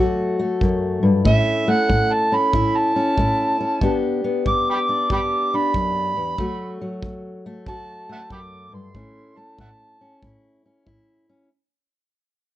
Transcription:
0.00 0.57 D2 medium
0.00 1.25 F#3 medium
0.00 0.38 A3 medium
0.00 1.23 F#4 medium
0.39 1.24 A3 medium
0.61 1.02 F#2 medium
0.61 kick medium
1.03 1.25 G2 medium
1.25 1.85 A2 medium
1.25 1.66 A3 medium
1.25 2.31 C#4 medium
1.25 2.53 E4 medium
1.25 1.72 E5 loud
1.25 kick medium
1.68 3.79 A3 medium
1.68 2.14 F#5 medium
1.89 2.49 A2 medium
1.89 kick medium
2.13 2.37 A5 medium
2.32 2.95 C#4 medium
2.32 2.78 B5 medium
2.53 3.13 A2 medium
2.53 3.18 E4 medium
2.53 kick medium
2.76 4.00 A5 loud
2.96 3.59 C#4 medium
3.18 3.78 A2 medium
3.18 3.80 E4 medium
3.18 kick medium
3.61 3.80 C#4 medium
3.82 4.42 G2 medium
3.82 4.23 B3 soft
3.82 4.89 D4 medium
3.82 5.09 G4 medium
3.82 kick medium
4.24 6.36 B3 medium
4.46 5.06 G2 medium
4.46 4.68 D6 loud
4.46 kick medium
4.70 4.79 G5 medium
4.70 4.78 B5 medium
4.70 5.11 D6 loud
4.89 5.53 D4 medium
5.10 5.70 G2 medium
5.10 6.36 G4 medium
5.10 5.19 G5 medium
5.10 5.20 B5 medium
5.10 5.57 D6 medium
5.10 kick medium
5.54 6.37 D4 medium
5.54 6.79 B5 loud
5.74 6.16 F#2 medium
5.74 kick medium
6.17 6.38 E2 medium
6.38 6.98 D2 medium
6.38 6.80 F#3 medium
6.38 7.46 A3 medium
6.38 7.67 F#4 medium
6.38 kick medium
6.81 8.95 F#3 medium
7.03 7.62 D2 medium
7.03 kick medium
7.46 8.09 A3 medium
7.67 8.27 D2 medium
7.67 8.93 F#4 medium
7.67 8.09 A5 loud
7.67 kick medium
8.09 8.95 A3 medium
8.09 8.19 E5 medium
8.09 8.21 F#5 medium
8.09 8.32 A5 loud
8.30 8.72 F#2 medium
8.30 8.40 G5 medium
8.30 8.40 B5 medium
8.30 8.72 D6 loud
8.30 kick medium
8.72 8.95 G2 medium
8.72 9.39 C6 medium
8.95 9.54 A2 medium
8.95 9.36 A3 medium
8.95 10.00 C#4 medium
8.95 10.22 E4 medium
8.95 kick medium
9.37 11.48 A3 medium
9.37 9.58 A5 medium
9.59 10.18 A2 medium
9.59 9.68 E5 medium
9.59 9.70 F#5 medium
9.59 10.22 A5 medium
9.59 kick medium
10.01 10.64 C#4 medium
10.22 10.82 A2 medium
10.22 10.86 E4 medium
10.22 kick medium
10.66 11.28 C#4 medium
10.86 11.46 A2 medium
10.86 11.48 E4 medium
10.86 kick medium
11.29 11.48 C#4 medium

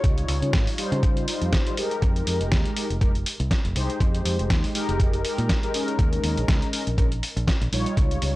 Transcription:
0.00 0.25 C#2 medium
0.00 0.75 G3 medium
0.00 0.76 D#4 medium
0.00 0.76 F4 medium
0.00 0.76 C#5 medium
0.00 kick loud
0.00 closed hi-hat medium
0.18 closed hi-hat soft
0.28 0.40 C#2 medium
0.28 open hi-hat loud
0.42 0.52 C#3 medium
0.42 closed hi-hat soft
0.53 0.65 G#1 loud
0.53 kick loud
0.53 snare loud
0.53 closed hi-hat medium
0.67 open hi-hat medium
0.78 1.25 G3 loud
0.78 1.25 D#4 medium
0.78 1.25 F4 medium
0.78 1.26 C5 loud
0.78 open hi-hat loud
0.92 1.25 C#3 medium
0.92 closed hi-hat soft
1.03 kick loud
1.03 closed hi-hat medium
1.17 closed hi-hat soft
1.28 1.63 G3 medium
1.28 1.63 D#4 medium
1.28 1.63 F4 medium
1.28 1.64 C5 medium
1.28 open hi-hat loud
1.42 1.51 F2 medium
1.42 closed hi-hat soft
1.53 kick loud
1.53 snare loud
1.53 closed hi-hat medium
1.66 1.75 G3 medium
1.66 1.75 D#4 medium
1.66 1.75 F4 medium
1.66 1.75 C5 loud
1.66 closed hi-hat soft
1.77 2.74 G#3 medium
1.77 2.74 D#4 medium
1.77 2.74 G4 medium
1.77 2.75 A#4 medium
1.77 open hi-hat loud
1.91 closed hi-hat soft
2.02 2.24 F2 medium
2.02 kick loud
2.02 closed hi-hat medium
2.16 closed hi-hat soft
2.27 2.39 F2 medium
2.27 open hi-hat loud
2.41 2.50 F1 medium
2.41 closed hi-hat soft
2.52 2.63 D#2 loud
2.52 kick loud
2.52 snare loud
2.52 closed hi-hat medium
2.65 closed hi-hat soft
2.76 2.86 G#3 medium
2.76 2.86 D#4 medium
2.76 2.86 G4 medium
2.76 2.86 A#4 medium
2.76 open hi-hat loud
2.90 3.23 F1 medium
2.90 closed hi-hat soft
3.01 3.10 G#3 medium
3.01 3.11 D#4 medium
3.01 3.11 G4 medium
3.01 3.11 A#4 medium
3.01 kick loud
3.01 closed hi-hat medium
3.15 closed hi-hat soft
3.26 open hi-hat loud
3.40 3.49 C2 medium
3.40 closed hi-hat soft
3.51 kick loud
3.51 snare loud
3.51 closed hi-hat medium
3.65 3.74 F1 medium
3.65 closed hi-hat soft
3.75 3.87 C2 medium
3.75 4.72 G#3 medium
3.75 4.72 D#4 medium
3.75 4.73 G4 medium
3.75 4.73 C5 medium
3.75 open hi-hat loud
3.90 closed hi-hat soft
4.00 4.22 F2 medium
4.00 kick loud
4.00 closed hi-hat medium
4.15 closed hi-hat soft
4.25 4.37 F2 medium
4.25 open hi-hat medium
4.39 4.48 F1 medium
4.39 closed hi-hat soft
4.50 4.62 D#2 medium
4.50 kick loud
4.50 snare loud
4.50 closed hi-hat medium
4.64 open hi-hat medium
4.74 5.22 G#3 loud
4.74 5.22 D#4 medium
4.74 5.22 G4 medium
4.74 5.22 A#4 loud
4.74 open hi-hat loud
4.89 5.22 F1 medium
4.89 closed hi-hat soft
5.00 kick loud
5.00 closed hi-hat medium
5.13 closed hi-hat soft
5.24 5.60 G#3 medium
5.24 5.60 D#4 medium
5.24 5.60 G4 medium
5.24 5.60 A#4 medium
5.24 open hi-hat loud
5.38 5.48 A#2 medium
5.38 closed hi-hat soft
5.49 kick loud
5.49 snare loud
5.49 closed hi-hat medium
5.63 5.71 G#3 medium
5.63 5.72 D#4 medium
5.63 5.72 G4 medium
5.63 5.72 A#4 loud
5.63 closed hi-hat soft
5.74 6.70 G#3 medium
5.74 6.71 C#4 medium
5.74 6.71 D#4 medium
5.74 6.71 A#4 medium
5.74 open hi-hat loud
5.88 closed hi-hat soft
5.99 6.20 D#2 medium
5.99 kick loud
5.99 closed hi-hat medium
6.13 closed hi-hat soft
6.24 6.35 D#2 medium
6.24 open hi-hat loud
6.37 6.47 A#1 medium
6.37 closed hi-hat soft
6.48 6.60 C#2 loud
6.48 kick loud
6.48 snare loud
6.48 closed hi-hat medium
6.62 closed hi-hat soft
6.73 6.82 G#3 medium
6.73 6.82 C#4 medium
6.73 6.83 D#4 medium
6.73 6.83 A#4 medium
6.73 open hi-hat loud
6.87 7.20 A#1 medium
6.87 closed hi-hat soft
6.98 7.07 G#3 medium
6.98 7.07 C#4 medium
6.98 7.07 D#4 medium
6.98 7.07 A#4 medium
6.98 kick loud
6.98 closed hi-hat medium
7.12 closed hi-hat soft
7.23 open hi-hat loud
7.36 7.46 A#1 medium
7.36 closed hi-hat soft
7.48 kick loud
7.48 snare loud
7.48 closed hi-hat medium
7.61 7.71 A#1 medium
7.61 closed hi-hat soft
7.72 7.84 A#1 medium
7.72 8.36 G3 medium
7.72 8.36 D#4 medium
7.72 8.36 F4 medium
7.72 8.36 C#5 medium
7.72 open hi-hat loud
7.86 closed hi-hat soft
7.97 8.19 C#2 medium
7.97 kick loud
7.97 closed hi-hat medium
8.11 closed hi-hat soft
8.22 8.34 C#2 medium
8.22 open hi-hat medium

